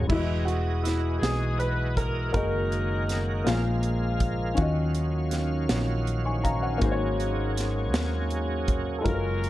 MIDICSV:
0, 0, Header, 1, 7, 480
1, 0, Start_track
1, 0, Tempo, 747198
1, 62, Time_signature, 6, 3, 24, 8
1, 6101, End_track
2, 0, Start_track
2, 0, Title_t, "Grand piano"
2, 0, Program_c, 0, 0
2, 57, Note_on_c, 0, 64, 77
2, 283, Note_off_c, 0, 64, 0
2, 290, Note_on_c, 0, 66, 72
2, 519, Note_off_c, 0, 66, 0
2, 535, Note_on_c, 0, 64, 74
2, 786, Note_off_c, 0, 64, 0
2, 789, Note_on_c, 0, 68, 75
2, 1010, Note_off_c, 0, 68, 0
2, 1022, Note_on_c, 0, 71, 71
2, 1268, Note_on_c, 0, 70, 81
2, 1270, Note_off_c, 0, 71, 0
2, 1493, Note_off_c, 0, 70, 0
2, 1502, Note_on_c, 0, 70, 93
2, 2438, Note_off_c, 0, 70, 0
2, 5771, Note_on_c, 0, 69, 58
2, 5809, Note_on_c, 0, 70, 81
2, 5821, Note_off_c, 0, 69, 0
2, 6101, Note_off_c, 0, 70, 0
2, 6101, End_track
3, 0, Start_track
3, 0, Title_t, "Upright piano"
3, 0, Program_c, 1, 0
3, 0, Control_c, 1, 64, 127
3, 46, Note_on_c, 1, 55, 47
3, 64, Note_on_c, 1, 64, 51
3, 70, Control_c, 1, 64, 0
3, 72, Note_on_c, 1, 52, 53
3, 80, Note_on_c, 1, 66, 57
3, 88, Note_on_c, 1, 56, 59
3, 93, Note_on_c, 1, 75, 62
3, 96, Note_off_c, 1, 55, 0
3, 202, Control_c, 1, 64, 127
3, 762, Note_off_c, 1, 52, 0
3, 1479, Note_off_c, 1, 64, 0
3, 1487, Note_off_c, 1, 66, 0
3, 1491, Note_off_c, 1, 56, 0
3, 1493, Note_off_c, 1, 75, 0
3, 1494, Note_on_c, 1, 58, 55
3, 1505, Note_on_c, 1, 66, 50
3, 1510, Control_c, 1, 64, 0
3, 1511, Note_on_c, 1, 68, 51
3, 1519, Note_on_c, 1, 75, 69
3, 1624, Control_c, 1, 64, 127
3, 2203, Note_off_c, 1, 58, 0
3, 2212, Note_on_c, 1, 58, 61
3, 2222, Note_on_c, 1, 65, 60
3, 2223, Note_off_c, 1, 68, 0
3, 2225, Note_off_c, 1, 66, 0
3, 2227, Note_on_c, 1, 46, 65
3, 2232, Note_off_c, 1, 75, 0
3, 2232, Control_c, 1, 64, 0
3, 2233, Note_on_c, 1, 68, 57
3, 2239, Note_on_c, 1, 77, 76
3, 2329, Control_c, 1, 64, 127
3, 2920, Note_off_c, 1, 46, 0
3, 2920, Note_on_c, 1, 61, 70
3, 2926, Note_off_c, 1, 65, 0
3, 2936, Note_on_c, 1, 65, 69
3, 2939, Note_off_c, 1, 58, 0
3, 2941, Note_on_c, 1, 51, 74
3, 2949, Note_off_c, 1, 68, 0
3, 2951, Note_on_c, 1, 66, 69
3, 2952, Note_off_c, 1, 77, 0
3, 2954, Control_c, 1, 64, 0
3, 2970, Note_on_c, 1, 75, 79
3, 3056, Control_c, 1, 64, 127
3, 3637, Note_off_c, 1, 51, 0
3, 3663, Note_off_c, 1, 75, 0
3, 4018, Note_on_c, 1, 85, 55
3, 4022, Note_on_c, 1, 80, 44
3, 4134, Note_on_c, 1, 82, 61
3, 4135, Note_off_c, 1, 85, 0
3, 4137, Note_off_c, 1, 80, 0
3, 4139, Note_on_c, 1, 77, 58
3, 4253, Note_off_c, 1, 82, 0
3, 4256, Note_off_c, 1, 77, 0
3, 4256, Note_on_c, 1, 78, 57
3, 4260, Note_on_c, 1, 73, 43
3, 4347, Note_off_c, 1, 61, 0
3, 4355, Note_off_c, 1, 65, 0
3, 4356, Note_on_c, 1, 58, 75
3, 4361, Note_off_c, 1, 66, 0
3, 4370, Note_on_c, 1, 66, 67
3, 4377, Note_on_c, 1, 44, 71
3, 4386, Note_on_c, 1, 68, 62
3, 4393, Control_c, 1, 64, 0
3, 4402, Note_on_c, 1, 72, 69
3, 4434, Note_off_c, 1, 73, 0
3, 4436, Note_off_c, 1, 72, 0
3, 4443, Note_on_c, 1, 73, 80
3, 4488, Note_off_c, 1, 78, 0
3, 4497, Control_c, 1, 64, 127
3, 5075, Note_off_c, 1, 44, 0
3, 5784, Note_off_c, 1, 58, 0
3, 5788, Note_on_c, 1, 56, 60
3, 5792, Note_off_c, 1, 66, 0
3, 5799, Note_off_c, 1, 68, 0
3, 5806, Note_on_c, 1, 65, 54
3, 5821, Note_on_c, 1, 54, 53
3, 5828, Note_off_c, 1, 73, 0
3, 5832, Control_c, 1, 64, 0
3, 5838, Note_on_c, 1, 69, 55
3, 5873, Note_off_c, 1, 69, 0
3, 5878, Note_on_c, 1, 70, 65
3, 5940, Control_c, 1, 64, 127
3, 6101, Note_off_c, 1, 54, 0
3, 6101, Note_off_c, 1, 56, 0
3, 6101, Note_off_c, 1, 65, 0
3, 6101, Note_off_c, 1, 70, 0
3, 6101, End_track
4, 0, Start_track
4, 0, Title_t, "Horn section"
4, 0, Program_c, 2, 61
4, 62, Note_on_c, 2, 64, 71
4, 66, Note_on_c, 2, 56, 62
4, 69, Note_on_c, 2, 59, 60
4, 285, Note_off_c, 2, 64, 0
4, 287, Note_on_c, 2, 66, 75
4, 525, Note_on_c, 2, 64, 75
4, 535, Note_off_c, 2, 66, 0
4, 757, Note_off_c, 2, 64, 0
4, 759, Note_off_c, 2, 56, 0
4, 760, Note_off_c, 2, 59, 0
4, 764, Note_on_c, 2, 68, 84
4, 1014, Note_off_c, 2, 68, 0
4, 1020, Note_on_c, 2, 71, 85
4, 1262, Note_off_c, 2, 71, 0
4, 1262, Note_on_c, 2, 70, 80
4, 1486, Note_off_c, 2, 70, 0
4, 1499, Note_on_c, 2, 61, 66
4, 1501, Note_on_c, 2, 63, 56
4, 1501, Note_on_c, 2, 70, 81
4, 2436, Note_off_c, 2, 61, 0
4, 2438, Note_off_c, 2, 63, 0
4, 2438, Note_off_c, 2, 70, 0
4, 5824, Note_on_c, 2, 65, 57
4, 5825, Note_on_c, 2, 61, 55
4, 5829, Note_on_c, 2, 70, 79
4, 6101, Note_off_c, 2, 61, 0
4, 6101, Note_off_c, 2, 65, 0
4, 6101, Note_off_c, 2, 70, 0
4, 6101, End_track
5, 0, Start_track
5, 0, Title_t, "Tonewheel organ"
5, 0, Program_c, 3, 16
5, 73, Note_on_c, 3, 56, 52
5, 79, Note_on_c, 3, 52, 57
5, 79, Note_on_c, 3, 66, 59
5, 80, Note_on_c, 3, 75, 51
5, 1498, Note_off_c, 3, 52, 0
5, 1498, Note_off_c, 3, 75, 0
5, 1523, Note_on_c, 3, 51, 57
5, 1525, Note_on_c, 3, 58, 54
5, 2211, Note_off_c, 3, 66, 0
5, 2227, Note_off_c, 3, 51, 0
5, 2239, Note_on_c, 3, 77, 60
5, 2244, Note_on_c, 3, 53, 63
5, 2925, Note_off_c, 3, 56, 0
5, 2936, Note_on_c, 3, 54, 58
5, 2939, Note_on_c, 3, 61, 52
5, 2940, Note_on_c, 3, 51, 59
5, 2941, Note_off_c, 3, 58, 0
5, 2948, Note_off_c, 3, 53, 0
5, 4368, Note_off_c, 3, 51, 0
5, 4371, Note_off_c, 3, 77, 0
5, 4391, Note_on_c, 3, 58, 51
5, 4394, Note_on_c, 3, 68, 61
5, 5796, Note_off_c, 3, 61, 0
5, 5823, Note_on_c, 3, 65, 51
5, 6101, Note_off_c, 3, 54, 0
5, 6101, Note_off_c, 3, 58, 0
5, 6101, Note_off_c, 3, 65, 0
5, 6101, Note_off_c, 3, 68, 0
5, 6101, End_track
6, 0, Start_track
6, 0, Title_t, "Fingered electric bass"
6, 0, Program_c, 4, 33
6, 63, Note_on_c, 4, 28, 85
6, 757, Note_off_c, 4, 28, 0
6, 785, Note_on_c, 4, 35, 72
6, 1479, Note_off_c, 4, 35, 0
6, 1506, Note_on_c, 4, 30, 77
6, 2200, Note_off_c, 4, 30, 0
6, 2226, Note_on_c, 4, 34, 75
6, 2920, Note_off_c, 4, 34, 0
6, 2945, Note_on_c, 4, 39, 89
6, 3639, Note_off_c, 4, 39, 0
6, 3665, Note_on_c, 4, 34, 80
6, 4360, Note_off_c, 4, 34, 0
6, 4380, Note_on_c, 4, 32, 81
6, 5098, Note_off_c, 4, 32, 0
6, 5098, Note_on_c, 4, 39, 72
6, 5795, Note_off_c, 4, 39, 0
6, 5819, Note_on_c, 4, 30, 87
6, 6101, Note_off_c, 4, 30, 0
6, 6101, End_track
7, 0, Start_track
7, 0, Title_t, "Drums"
7, 62, Note_on_c, 9, 36, 87
7, 63, Note_on_c, 9, 49, 71
7, 127, Note_off_c, 9, 36, 0
7, 128, Note_off_c, 9, 49, 0
7, 309, Note_on_c, 9, 42, 35
7, 373, Note_off_c, 9, 42, 0
7, 548, Note_on_c, 9, 42, 65
7, 557, Note_on_c, 9, 38, 30
7, 613, Note_off_c, 9, 42, 0
7, 621, Note_off_c, 9, 38, 0
7, 792, Note_on_c, 9, 38, 74
7, 792, Note_on_c, 9, 42, 78
7, 856, Note_off_c, 9, 38, 0
7, 857, Note_off_c, 9, 42, 0
7, 1026, Note_on_c, 9, 42, 37
7, 1091, Note_off_c, 9, 42, 0
7, 1266, Note_on_c, 9, 36, 73
7, 1271, Note_on_c, 9, 42, 54
7, 1330, Note_off_c, 9, 36, 0
7, 1335, Note_off_c, 9, 42, 0
7, 1503, Note_on_c, 9, 42, 59
7, 1505, Note_on_c, 9, 36, 80
7, 1568, Note_off_c, 9, 42, 0
7, 1569, Note_off_c, 9, 36, 0
7, 1748, Note_on_c, 9, 42, 35
7, 1812, Note_off_c, 9, 42, 0
7, 1987, Note_on_c, 9, 42, 62
7, 1996, Note_on_c, 9, 38, 30
7, 2051, Note_off_c, 9, 42, 0
7, 2060, Note_off_c, 9, 38, 0
7, 2227, Note_on_c, 9, 38, 77
7, 2228, Note_on_c, 9, 42, 68
7, 2292, Note_off_c, 9, 38, 0
7, 2292, Note_off_c, 9, 42, 0
7, 2460, Note_on_c, 9, 42, 37
7, 2524, Note_off_c, 9, 42, 0
7, 2699, Note_on_c, 9, 42, 57
7, 2701, Note_on_c, 9, 36, 78
7, 2764, Note_off_c, 9, 42, 0
7, 2766, Note_off_c, 9, 36, 0
7, 2935, Note_on_c, 9, 42, 61
7, 2941, Note_on_c, 9, 36, 78
7, 2999, Note_off_c, 9, 42, 0
7, 3005, Note_off_c, 9, 36, 0
7, 3177, Note_on_c, 9, 42, 45
7, 3241, Note_off_c, 9, 42, 0
7, 3413, Note_on_c, 9, 42, 65
7, 3422, Note_on_c, 9, 38, 31
7, 3477, Note_off_c, 9, 42, 0
7, 3486, Note_off_c, 9, 38, 0
7, 3657, Note_on_c, 9, 38, 84
7, 3658, Note_on_c, 9, 42, 74
7, 3721, Note_off_c, 9, 38, 0
7, 3722, Note_off_c, 9, 42, 0
7, 3901, Note_on_c, 9, 42, 37
7, 3965, Note_off_c, 9, 42, 0
7, 4141, Note_on_c, 9, 36, 66
7, 4145, Note_on_c, 9, 42, 54
7, 4206, Note_off_c, 9, 36, 0
7, 4209, Note_off_c, 9, 42, 0
7, 4377, Note_on_c, 9, 42, 57
7, 4380, Note_on_c, 9, 36, 81
7, 4442, Note_off_c, 9, 42, 0
7, 4444, Note_off_c, 9, 36, 0
7, 4624, Note_on_c, 9, 42, 41
7, 4689, Note_off_c, 9, 42, 0
7, 4866, Note_on_c, 9, 42, 69
7, 4875, Note_on_c, 9, 38, 28
7, 4930, Note_off_c, 9, 42, 0
7, 4939, Note_off_c, 9, 38, 0
7, 5100, Note_on_c, 9, 38, 89
7, 5101, Note_on_c, 9, 42, 70
7, 5164, Note_off_c, 9, 38, 0
7, 5165, Note_off_c, 9, 42, 0
7, 5335, Note_on_c, 9, 42, 38
7, 5399, Note_off_c, 9, 42, 0
7, 5576, Note_on_c, 9, 42, 59
7, 5578, Note_on_c, 9, 36, 80
7, 5640, Note_off_c, 9, 42, 0
7, 5642, Note_off_c, 9, 36, 0
7, 5818, Note_on_c, 9, 36, 77
7, 5818, Note_on_c, 9, 42, 61
7, 5882, Note_off_c, 9, 36, 0
7, 5882, Note_off_c, 9, 42, 0
7, 6063, Note_on_c, 9, 42, 37
7, 6101, Note_off_c, 9, 42, 0
7, 6101, End_track
0, 0, End_of_file